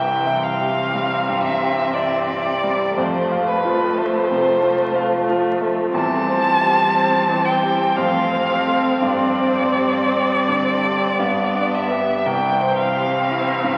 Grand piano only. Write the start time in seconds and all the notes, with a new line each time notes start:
Already playing: C2
0.26 E5
0.61 G4
0.95 G3
1.29 G2
1.63 G4
1.96 E5
2.31 G4
2.64 G3
2.98 F2
3.32 F5
3.65 F4
3.98 A3
4.31 C3
4.63 F4
4.96 F5
5.29 F4
5.61 A3
5.94 E2
6.27 C5
6.61 G4
6.95 C4
7.29 E3
7.63 G4
7.98 F2
8.33 C4
8.67 A4 C5
9.02 G2
9.39 C5
9.75 G4
10.12 C4
10.48 D3
10.84 G4
11.19 G2
11.54 D4
11.90 G4 B4
12.26 C2
12.61 C5
12.96 G4
13.31 E4
13.64 G2